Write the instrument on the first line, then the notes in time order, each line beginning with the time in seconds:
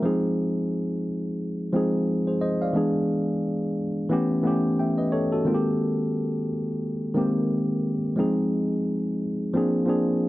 tine electric piano
0.02 F3 G#3 C4 D#4 G#4
1.73 F3 G#3 C4 D#4 G#4
2.27 G#4 C5
2.41 C5 D#5
2.62 D5 F5
2.73 E3 G#3 B3 D4 G#4
4.09 E3 A3 B3 C#4 G4
4.43 E3 A3 B3 C#4 G4
4.79 E5 G5
4.98 B4 D#5
5.12 A4 C#5
5.32 F#4 A4
5.45 D#3 G#3 A#3 C4 F4
5.54 G4
7.14 D#3 G#3 A#3 C4 G4
8.16 F3 G#3 C4 D#4 G#4
9.53 F3 A#3 C4 D4 G#4
9.86 F3 A#3 C4 D4 G#4